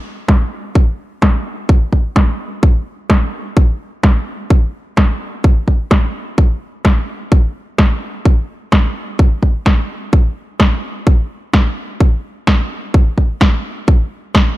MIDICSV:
0, 0, Header, 1, 2, 480
1, 0, Start_track
1, 0, Tempo, 468750
1, 1733, Time_signature, 4, 2, 24, 8
1, 14923, End_track
2, 0, Start_track
2, 0, Title_t, "Drums"
2, 291, Note_on_c, 9, 38, 112
2, 292, Note_on_c, 9, 36, 108
2, 393, Note_off_c, 9, 38, 0
2, 395, Note_off_c, 9, 36, 0
2, 772, Note_on_c, 9, 36, 107
2, 874, Note_off_c, 9, 36, 0
2, 1250, Note_on_c, 9, 38, 123
2, 1252, Note_on_c, 9, 36, 100
2, 1353, Note_off_c, 9, 38, 0
2, 1354, Note_off_c, 9, 36, 0
2, 1732, Note_on_c, 9, 36, 113
2, 1834, Note_off_c, 9, 36, 0
2, 1972, Note_on_c, 9, 36, 58
2, 2074, Note_off_c, 9, 36, 0
2, 2211, Note_on_c, 9, 38, 115
2, 2212, Note_on_c, 9, 36, 113
2, 2313, Note_off_c, 9, 38, 0
2, 2314, Note_off_c, 9, 36, 0
2, 2692, Note_on_c, 9, 36, 114
2, 2794, Note_off_c, 9, 36, 0
2, 3170, Note_on_c, 9, 38, 126
2, 3172, Note_on_c, 9, 36, 101
2, 3273, Note_off_c, 9, 38, 0
2, 3274, Note_off_c, 9, 36, 0
2, 3652, Note_on_c, 9, 36, 114
2, 3754, Note_off_c, 9, 36, 0
2, 4131, Note_on_c, 9, 38, 113
2, 4132, Note_on_c, 9, 36, 114
2, 4233, Note_off_c, 9, 38, 0
2, 4235, Note_off_c, 9, 36, 0
2, 4612, Note_on_c, 9, 36, 110
2, 4715, Note_off_c, 9, 36, 0
2, 5091, Note_on_c, 9, 38, 114
2, 5092, Note_on_c, 9, 36, 109
2, 5193, Note_off_c, 9, 38, 0
2, 5195, Note_off_c, 9, 36, 0
2, 5573, Note_on_c, 9, 36, 112
2, 5675, Note_off_c, 9, 36, 0
2, 5813, Note_on_c, 9, 36, 59
2, 5915, Note_off_c, 9, 36, 0
2, 6051, Note_on_c, 9, 38, 111
2, 6053, Note_on_c, 9, 36, 112
2, 6153, Note_off_c, 9, 38, 0
2, 6155, Note_off_c, 9, 36, 0
2, 6533, Note_on_c, 9, 36, 112
2, 6635, Note_off_c, 9, 36, 0
2, 7011, Note_on_c, 9, 38, 110
2, 7013, Note_on_c, 9, 36, 104
2, 7113, Note_off_c, 9, 38, 0
2, 7115, Note_off_c, 9, 36, 0
2, 7493, Note_on_c, 9, 36, 116
2, 7595, Note_off_c, 9, 36, 0
2, 7971, Note_on_c, 9, 38, 108
2, 7973, Note_on_c, 9, 36, 105
2, 8073, Note_off_c, 9, 38, 0
2, 8075, Note_off_c, 9, 36, 0
2, 8453, Note_on_c, 9, 36, 107
2, 8555, Note_off_c, 9, 36, 0
2, 8931, Note_on_c, 9, 38, 116
2, 8932, Note_on_c, 9, 36, 105
2, 9033, Note_off_c, 9, 38, 0
2, 9035, Note_off_c, 9, 36, 0
2, 9412, Note_on_c, 9, 36, 112
2, 9515, Note_off_c, 9, 36, 0
2, 9652, Note_on_c, 9, 36, 59
2, 9755, Note_off_c, 9, 36, 0
2, 9891, Note_on_c, 9, 38, 103
2, 9892, Note_on_c, 9, 36, 107
2, 9993, Note_off_c, 9, 38, 0
2, 9994, Note_off_c, 9, 36, 0
2, 10372, Note_on_c, 9, 36, 109
2, 10474, Note_off_c, 9, 36, 0
2, 10851, Note_on_c, 9, 38, 110
2, 10852, Note_on_c, 9, 36, 97
2, 10953, Note_off_c, 9, 38, 0
2, 10955, Note_off_c, 9, 36, 0
2, 11333, Note_on_c, 9, 36, 107
2, 11435, Note_off_c, 9, 36, 0
2, 11812, Note_on_c, 9, 38, 116
2, 11813, Note_on_c, 9, 36, 101
2, 11914, Note_off_c, 9, 38, 0
2, 11915, Note_off_c, 9, 36, 0
2, 12293, Note_on_c, 9, 36, 108
2, 12395, Note_off_c, 9, 36, 0
2, 12772, Note_on_c, 9, 38, 115
2, 12773, Note_on_c, 9, 36, 103
2, 12874, Note_off_c, 9, 38, 0
2, 12875, Note_off_c, 9, 36, 0
2, 13253, Note_on_c, 9, 36, 112
2, 13355, Note_off_c, 9, 36, 0
2, 13493, Note_on_c, 9, 36, 58
2, 13595, Note_off_c, 9, 36, 0
2, 13731, Note_on_c, 9, 38, 119
2, 13732, Note_on_c, 9, 36, 109
2, 13833, Note_off_c, 9, 38, 0
2, 13835, Note_off_c, 9, 36, 0
2, 14212, Note_on_c, 9, 36, 112
2, 14314, Note_off_c, 9, 36, 0
2, 14690, Note_on_c, 9, 38, 114
2, 14692, Note_on_c, 9, 36, 105
2, 14793, Note_off_c, 9, 38, 0
2, 14794, Note_off_c, 9, 36, 0
2, 14923, End_track
0, 0, End_of_file